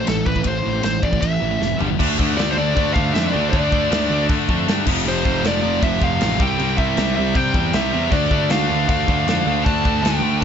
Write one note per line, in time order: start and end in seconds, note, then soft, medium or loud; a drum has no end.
0.07 0.21 A1 medium
0.07 0.25 A2 medium
0.07 0.25 E3 medium
0.07 0.26 A4 medium
0.07 snare loud
0.07 ride bell medium
0.26 0.40 A1 loud
0.26 0.35 A2 medium
0.26 0.36 E3 medium
0.26 0.47 B4 medium
0.26 kick medium
0.36 0.44 A2 medium
0.36 0.45 E3 medium
0.36 kick medium
0.44 0.59 A1 loud
0.44 0.63 A2 medium
0.44 0.63 E3 loud
0.44 0.83 C5 medium
0.44 kick medium
0.44 ride bell medium
0.66 0.79 A1 medium
0.66 0.73 A2 medium
0.66 0.73 E3 medium
0.74 0.82 A2 medium
0.74 0.83 E3 medium
0.83 0.98 A1 loud
0.83 1.01 A2 medium
0.83 1.01 E3 medium
0.83 1.04 C5 medium
0.83 snare loud
0.83 ride bell medium
1.02 1.16 A1 loud
1.02 1.12 A2 medium
1.02 1.12 E3 medium
1.02 1.21 D5 medium
1.02 kick loud
1.13 1.21 A2 medium
1.13 1.22 E3 medium
1.13 kick loud
1.22 1.36 A1 medium
1.22 1.40 A2 medium
1.22 1.40 E3 medium
1.22 1.76 E5 medium
1.22 kick medium
1.22 ride bell medium
1.42 1.55 A1 medium
1.42 1.50 A2 medium
1.42 1.50 E3 medium
1.51 1.59 A2 medium
1.51 1.59 E3 medium
1.60 1.74 F1 medium
1.60 1.78 A2 medium
1.60 1.78 E3 medium
1.60 snare medium
1.79 1.93 G1 medium
1.79 1.88 G2 medium
1.79 1.88 D3 medium
1.79 1.89 G3 medium
1.79 floor tom medium
1.90 2.00 G2 medium
1.90 1.98 D3 medium
1.99 2.17 D2 loud
1.99 2.18 D3 loud
1.99 2.19 A3 loud
1.99 2.20 D4 loud
1.99 kick loud
1.99 crash loud
1.99 crash medium
2.19 2.37 D2 loud
2.19 2.38 D3 medium
2.19 2.39 A3 medium
2.19 2.39 D4 medium
2.19 kick medium
2.38 2.56 D2 loud
2.38 2.57 D3 loud
2.38 2.58 A3 loud
2.38 2.57 D4 loud
2.38 2.50 D5 loud
2.38 snare loud
2.38 crash medium
2.50 2.57 C5 medium
2.57 2.75 D2 medium
2.57 2.76 D3 loud
2.57 2.77 A3 medium
2.57 2.76 D4 loud
2.57 2.93 D5 medium
2.76 2.94 D2 loud
2.76 2.95 D3 loud
2.76 2.96 A3 loud
2.76 2.96 D4 loud
2.76 kick loud
2.76 crash medium
2.94 3.13 D2 loud
2.94 3.13 D3 medium
2.94 3.15 A3 medium
2.94 3.15 D4 loud
2.94 3.14 F5 loud
2.94 kick medium
3.14 3.33 F2 medium
3.14 3.32 D3 medium
3.14 3.34 A3 medium
3.14 3.33 D4 loud
3.14 3.30 E5 loud
3.14 snare loud
3.14 crash medium
3.30 3.52 D3 medium
3.30 3.54 A3 medium
3.30 3.49 D5 loud
3.34 3.52 D2 loud
3.34 3.53 D4 medium
3.50 3.89 D2 loud
3.50 3.72 D3 loud
3.50 4.24 D5 medium
3.50 kick loud
3.50 crash medium
3.54 3.74 A3 loud
3.54 3.73 D4 loud
3.72 3.90 D3 medium
3.72 3.92 A3 medium
3.72 3.92 D4 medium
3.72 kick medium
3.92 4.09 D2 loud
3.92 4.10 D3 medium
3.92 4.10 A3 loud
3.92 4.11 D4 loud
3.92 snare loud
3.92 crash medium
4.10 4.28 D2 loud
4.10 4.29 D3 medium
4.10 4.29 A3 loud
4.10 4.30 D4 loud
4.29 4.47 D3 loud
4.29 4.47 A3 loud
4.29 4.48 D4 loud
4.29 kick loud
4.29 crash medium
4.48 4.66 F2 loud
4.48 4.66 D3 medium
4.48 4.67 A3 loud
4.48 4.68 D4 loud
4.48 kick medium
4.67 4.85 G2 medium
4.67 4.85 D3 medium
4.67 4.86 A3 loud
4.67 4.86 D4 loud
4.67 snare loud
4.67 crash medium
4.86 5.04 F1 loud
4.86 5.04 F2 loud
4.86 5.05 C3 loud
4.86 5.05 F3 loud
4.86 kick loud
4.86 crash loud
5.05 5.23 F1 loud
5.05 5.24 F2 loud
5.05 5.25 C3 loud
5.05 5.25 F3 loud
5.05 5.47 C5 medium
5.05 crash medium
5.25 5.43 F1 medium
5.25 5.42 F2 medium
5.25 5.43 C3 medium
5.25 5.44 F3 medium
5.25 kick medium
5.43 5.62 F1 loud
5.43 5.62 F2 loud
5.43 5.62 C3 loud
5.43 5.63 F3 loud
5.43 5.85 D5 medium
5.43 snare loud
5.43 crash medium
5.63 5.81 F1 loud
5.63 5.81 F2 medium
5.63 5.81 C3 medium
5.63 5.81 F3 loud
5.82 6.00 F1 loud
5.82 6.00 F2 loud
5.82 6.01 C3 loud
5.82 6.02 F3 loud
5.82 6.02 E5 medium
5.82 kick loud
5.82 crash medium
6.01 6.19 F1 loud
6.01 6.20 F2 medium
6.01 6.20 C3 loud
6.01 6.22 F3 loud
6.01 6.42 F5 loud
6.01 kick medium
6.21 6.39 A1 loud
6.21 6.39 F2 loud
6.21 6.38 C3 loud
6.21 6.39 F3 loud
6.21 snare loud
6.21 crash medium
6.39 6.58 C2 medium
6.39 6.57 C3 loud
6.39 6.57 G3 loud
6.39 6.58 C4 loud
6.39 6.78 G5 loud
6.39 kick loud
6.58 6.96 C2 loud
6.58 6.76 C3 loud
6.58 6.77 G3 loud
6.58 6.77 C4 loud
6.58 crash medium
6.77 6.95 C3 medium
6.77 6.96 G3 medium
6.77 6.96 C4 medium
6.77 7.14 E5 loud
6.77 kick medium
6.96 7.15 C2 loud
6.96 7.15 C3 loud
6.96 7.16 G3 loud
6.96 7.16 C4 loud
6.96 snare loud
6.96 crash medium
7.15 7.34 C2 loud
7.15 7.33 C3 medium
7.15 7.34 G3 medium
7.15 7.34 C4 loud
7.15 7.36 E5 medium
7.35 7.52 C3 medium
7.35 7.53 C3 medium
7.35 7.53 G3 loud
7.35 7.53 C4 loud
7.35 7.75 G5 loud
7.35 kick loud
7.35 crash medium
7.53 7.72 E2 medium
7.53 7.71 C3 medium
7.53 7.72 G3 medium
7.53 7.72 C4 loud
7.53 kick medium
7.72 7.92 C2 loud
7.72 7.90 C3 medium
7.72 7.91 G3 loud
7.72 7.92 C4 loud
7.72 8.14 E5 loud
7.72 snare loud
7.72 crash medium
7.91 8.11 E2 loud
7.91 8.10 C3 medium
7.91 8.11 G3 medium
7.91 8.11 C4 medium
8.11 8.30 D2 loud
8.11 8.31 D3 loud
8.11 8.33 A3 loud
8.11 8.33 D4 loud
8.11 8.51 D5 medium
8.11 kick loud
8.11 crash medium
8.31 8.49 D2 medium
8.31 8.50 D3 medium
8.31 8.51 A3 medium
8.31 8.52 D4 medium
8.31 kick medium
8.50 8.69 D2 medium
8.50 8.69 D3 medium
8.50 8.71 A3 loud
8.50 8.71 D4 loud
8.50 8.88 F5 loud
8.50 snare loud
8.50 crash medium
8.69 8.88 D2 medium
8.69 8.88 D3 medium
8.69 8.90 A3 loud
8.69 8.89 D4 loud
8.88 9.07 D2 medium
8.88 9.08 D3 loud
8.88 9.09 A3 loud
8.88 9.08 D4 loud
8.88 9.62 F5 loud
8.88 kick loud
8.88 crash medium
9.08 9.26 D2 loud
9.08 9.25 D3 medium
9.08 9.27 A3 loud
9.08 9.27 D4 medium
9.08 kick medium
9.26 9.45 F2 medium
9.26 9.46 D3 loud
9.26 9.47 A3 loud
9.26 9.47 D4 loud
9.26 snare loud
9.26 crash medium
9.46 9.64 D2 medium
9.46 9.64 D3 medium
9.46 9.65 A3 medium
9.46 9.65 D4 loud
9.65 10.02 D2 medium
9.65 9.82 D3 loud
9.65 9.83 A3 loud
9.65 9.83 D4 loud
9.65 10.05 A5 loud
9.65 kick loud
9.65 crash medium
9.83 10.01 D3 medium
9.83 10.03 A3 medium
9.83 10.03 D4 medium
9.83 kick medium
10.03 10.21 D2 medium
10.03 10.21 D3 loud
10.03 10.22 A3 loud
10.03 10.23 D4 loud
10.03 10.43 G5 loud
10.03 snare loud
10.03 crash medium
10.22 10.41 D2 loud
10.22 10.41 D3 loud
10.22 10.42 A3 loud
10.22 10.43 D4 loud
10.41 10.44 A5 loud